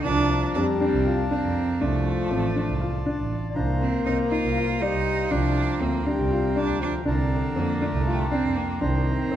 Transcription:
0.03 C2 F3 D4 A#4 A5
0.54 F2 G3 C4 D4
0.79 C4 D4
0.93 C2
1.06 F4
1.15 F5
1.30 C4 D4
1.43 F2
1.81 C2 F3 A3 D4 F4 D5
2.31 A1 C4
2.56 D4
2.68 C2
2.81 F4
3.06 D4
3.18 A1
3.50 D5
3.54 C2 A#3 D4 C5 F5 A#5
3.81 C4
4.05 C2 C4 D#4
4.30 D#4 F4
4.43 C2
4.52 F5
4.57 F4
4.81 G3 D#4 D5
4.93 C2
5.30 C2 F3 D4 A#4 G5
5.80 D2 A#3 C4
6.05 G3 C4 D4
6.18 C2
6.31 F4
6.56 D4
6.68 D2
6.81 F3 D4
7.05 C2 D3 C4 D4 A#4 A5
7.55 F2 A#3 C4
7.81 A3 D4
7.92 C2
8.06 A3 F4
8.14 G5
8.19 C6
8.24 D6
8.31 C4 D4
8.43 F2
8.56 A#3 G5
8.80 C2 D#3 C4 D4 C5 A#5
9.31 G2 C4

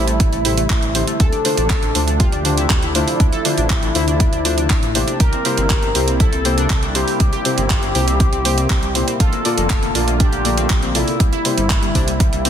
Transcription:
Already playing: A1 C3 G3 A3 E4
0.08 A3, closed hi-hat
0.20 A3, kick, closed hi-hat
0.33 A1 A3, closed hi-hat
0.45 A2 A3 E4 G4 C5, open hi-hat
0.58 A3, closed hi-hat
0.70 A1 A3, kick, clap, open hi-hat
0.83 closed hi-hat
0.95 D3 A3 E4 G4 C5, open hi-hat
1.07 A3, closed hi-hat
1.20 D2 C3 F3 A3 D4 A4, kick, closed hi-hat
1.32 D4, closed hi-hat
1.45 D3 A3 D4 F4 C5, open hi-hat
1.57 A1 D4, closed hi-hat
1.70 A4, kick, clap, closed hi-hat
1.82 D4, closed hi-hat
1.95 D2 D3 A3 D4 F4 C5, open hi-hat
2.07 D4, closed hi-hat
2.20 F4 G4, kick, closed hi-hat
2.32 D2 D4, closed hi-hat
2.45 D3 A3 D4 F4 C5, open hi-hat
2.58 E4, closed hi-hat
2.70 D2 D4, kick, clap, closed hi-hat
2.83 E4, closed hi-hat
2.95 D3 A3 D4 E4 F4 C5, open hi-hat
3.08 open hi-hat
3.20 D2 D4, kick, closed hi-hat
3.33 A4, closed hi-hat
3.45 D3 A3 D4 F4 C5, open hi-hat
3.58 A1 D4, closed hi-hat
3.70 G4, kick, clap, closed hi-hat
3.83 D4, closed hi-hat
3.95 D2 D3 A3 D4 E4 F4 C5, open hi-hat
4.08 D4, closed hi-hat
4.20 D4, kick, closed hi-hat
4.33 D2 D4, closed hi-hat
4.45 D3 A3 D4 F4 C5, open hi-hat
4.58 D4, closed hi-hat
4.70 A1 D4, kick, clap, open hi-hat
4.83 closed hi-hat
4.95 C3 A#3 D4 E4 G4 C5, open hi-hat
5.08 D4, closed hi-hat
5.20 C2 C3 G3 A#3 E4 G4 A#4, kick, closed hi-hat
5.33 C4, closed hi-hat
5.45 C3 A#3 C4 E4 G4 C5, open hi-hat
5.58 G1 C4, closed hi-hat
5.70 G4, kick, clap, closed hi-hat
5.83 C4, closed hi-hat
5.95 C2 C3 A#3 C4 E4 G4 C5, open hi-hat
6.08 C4, closed hi-hat
6.20 E4 A4, kick, closed hi-hat
6.33 C2 C4, closed hi-hat
6.45 C3 A#3 C4 E4 G4 C5, open hi-hat
6.58 D4, closed hi-hat
6.70 C2 C4, kick, clap, closed hi-hat
6.83 D4, closed hi-hat
6.95 C3 A#3 C4 E4 G4 C5, open hi-hat
7.08 open hi-hat
7.20 C2 C4, kick, closed hi-hat
7.33 G4, closed hi-hat
7.45 C3 A#3 C4 E4 G4 C5, open hi-hat
7.58 G1 C4, closed hi-hat
7.70 F4, kick, clap, closed hi-hat
7.83 C4, closed hi-hat
7.95 C2 C3 A#3 E4 G4 C5, open hi-hat
8.08 C4, closed hi-hat
8.20 C4, kick, closed hi-hat
8.33 C2 C4, closed hi-hat
8.45 C3 A#3 E4 G4 C5, open hi-hat
8.58 C4, closed hi-hat
8.70 C4, kick, clap, open hi-hat
8.83 closed hi-hat
8.95 A#2 A#3 C4 E4 G4 C5, open hi-hat
9.08 C4, closed hi-hat
9.20 A#1 D3 A3 A#3 F4 A4, kick, closed hi-hat
9.33 A#3, closed hi-hat
9.45 A#2 A#3 F4 A4 D5, open hi-hat
9.58 F1 A#3, closed hi-hat
9.70 F4, kick, clap, closed hi-hat
9.83 A#3, closed hi-hat
9.95 A#1 A#2 A#3 F4 A4 D5, open hi-hat
10.08 A#3, closed hi-hat
10.20 D4 G4, kick, closed hi-hat
10.33 A#1 A#3, closed hi-hat
10.45 A#2 A#3 F4 A4 D5, open hi-hat
10.58 C4, closed hi-hat
10.70 kick, clap, closed hi-hat
10.83 C4, closed hi-hat
10.95 C3 A#3 E4 F4 A4 D5, open hi-hat
11.08 open hi-hat
11.20 C2 C3 G3 E4, kick, closed hi-hat
11.33 E4, closed hi-hat
11.45 C3 G3 A#3 E4 G4 C5, open hi-hat
11.58 G1 G3, closed hi-hat
11.70 E4, kick, clap, closed hi-hat
11.83 G3, closed hi-hat
11.95 C2 C3 A#3 D4 E4 G4 C5, kick, open hi-hat
12.08 G3, closed hi-hat
12.20 G3, kick, closed hi-hat
12.33 C2 G3, closed hi-hat
12.45 C3 A#3 C4 E4 G4 C5, open hi-hat

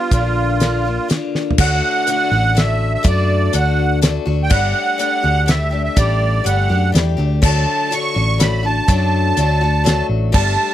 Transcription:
Already playing: G3 B3 D4 F4 G4
0.11 A#1 A#2 D3 A#3 D4 F4, kick, closed hi-hat
0.60 D3 A#3 D4 F4, snare, closed hi-hat
0.85 A#3 D4 F4
1.08 D3 A#3 D4 F4, snare, closed hi-hat
1.35 snare
1.51 floor tom
1.58 D2 D3 A3 D4 F#4 F#5, kick, crash
2.07 D3 A3 D4 F#4, closed hi-hat
2.32 A1 A3 D4 F#4
2.55 D3 A3 D4 F#4 E5, snare, closed hi-hat
2.94 E5
3.03 F#2 D3 A3 D4 F#4 D5, kick, closed hi-hat
3.53 D2 D3 A3 D4 F#4 F#5, closed hi-hat
4.02 D3 A3 D4 F#4, snare, closed hi-hat
4.25 D2 A3 D4 F#4
4.43 G5
4.50 G1 G3 A3 D4 G4 F#5, kick, crash
4.98 G3 A3 D4 G4, closed hi-hat
5.22 D2 A3 D4 G4
5.46 G3 A3 D4 G4 E5, snare, closed hi-hat
5.71 A3 D4 G4
5.84 E5
5.96 A1 G3 A3 D4 G4 D5, kick, closed hi-hat
6.44 G1 G3 A3 D4 G4 F#5, closed hi-hat
6.69 F#2 A3 D4 G4
6.92 E2 G3 A3 D4 G4, closed hi-hat
6.96 snare
7.17 D2 A3 D4 G4
7.42 D2 D3 F#3 A3 D4 F#4 A5, kick, crash
7.91 F#3 A3 D4 F#4 C#6, closed hi-hat
8.14 A1 A3 D4 F#4
8.38 F#3 A3 D4 F#4 B5, snare, closed hi-hat
8.63 A3 D4 F#4 A5
8.88 F#2 D3 F#3 A3 D4 F#4, kick, closed hi-hat
9.37 D2 F#3 A3 D4 F#4, closed hi-hat
9.61 A3 D4 F#4
9.84 F#3 A3 D4 F#4, snare, closed hi-hat
10.09 A1
10.32 G1 G3 A3 D4 G4 A5, kick, crash

